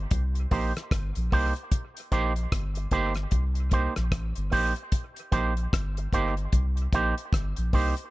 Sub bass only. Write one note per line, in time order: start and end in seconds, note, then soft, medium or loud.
0.12 0.46 C2 loud
0.52 0.73 A#1 medium
0.92 1.13 G1 medium
1.16 1.30 A#1 medium
1.33 1.53 C2 medium
2.12 2.47 A#1 medium
2.52 2.87 G1 loud
2.91 3.26 G1 medium
3.32 3.88 C2 medium
3.97 4.11 A#1 medium
4.37 4.51 G1 medium
4.53 4.74 A#1 medium
5.33 5.67 A#1 medium
5.73 6.08 G1 loud
6.13 6.47 G1 medium
6.53 6.87 C2 loud
6.93 7.14 A#1 medium
7.33 7.54 G1 medium
7.58 7.71 A#1 medium
7.73 7.94 C2 medium